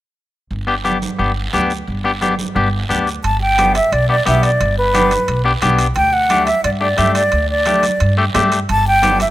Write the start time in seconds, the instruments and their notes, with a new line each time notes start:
0.51 upright bass G1, long guiro
0.67 clean electric guitar B3 D4 G4
0.84 clean electric guitar B3 D4 G4, high conga, short guiro
1.02 high conga, short guiro
1.19 upright bass G1, clean electric guitar B3 D4 G4, long guiro
1.53 upright bass D2, clean electric guitar B3 D4 G4, high conga, short guiro
1.70 short guiro
1.87 upright bass G1, long guiro
2.04 clean electric guitar B3 D4 G4
2.21 clean electric guitar B3 D4 G4, high conga, short guiro
2.39 high conga, short guiro
2.55 upright bass G1, clean electric guitar B3 D4 G4, long guiro
2.89 upright bass D2, clean electric guitar B3 D4 G4, high conga, short guiro
3.07 short guiro
3.24 upright bass G1, flute A5, high timbale, long guiro
3.41 flute G5
3.58 clean electric guitar B3 D4 G4, high conga, high timbale, short guiro
3.75 flute E5, high timbale, short guiro
3.92 upright bass B1, flute D5, high timbale, long guiro
4.09 clean electric guitar B3 D4 G4, flute D5
4.26 upright bass B1, clean electric guitar B3 D4 G4, flute E5, high conga, high timbale, short guiro
4.43 flute D5, high timbale, short guiro
4.60 upright bass G1, high timbale, long guiro
4.78 flute B4
4.94 clean electric guitar B3 D4 G4, high conga, high timbale, short guiro
5.11 high conga, high timbale, short guiro
5.28 upright bass B1, high timbale, long guiro
5.45 clean electric guitar B3 D4 G4
5.62 upright bass B1, clean electric guitar B3 D4 G4, high conga, high timbale, short guiro
5.79 high timbale, short guiro
5.96 upright bass D2, flute G5, high timbale, long guiro
6.13 flute F#5
6.30 clean electric guitar A3 D4 G4, high conga, high timbale, short guiro
6.47 flute E5, high timbale, short guiro
6.64 upright bass G2, flute D5, high timbale, long guiro
6.81 clean electric guitar A3 D4 G4, flute D5
6.97 upright bass G2, clean electric guitar A3 D4 G4, flute E5, high conga, high timbale, short guiro
7.15 flute D5, high timbale, short guiro
7.32 upright bass D2, high timbale, long guiro
7.50 flute D5
7.66 clean electric guitar A3 D4 G4, high conga, high timbale, short guiro
7.83 high conga, high timbale, short guiro
8.00 upright bass G2, high timbale, long guiro
8.18 clean electric guitar A3 D4 G4
8.34 upright bass G2, clean electric guitar A3 D4 G4, high conga, high timbale, low timbale, short guiro
8.52 high timbale, short guiro
8.69 upright bass G1, flute A5, high timbale, long guiro
8.88 flute G5
9.02 clean electric guitar B3 D4 G4, high conga, high timbale, short guiro
9.20 flute E5, high conga, high timbale, short guiro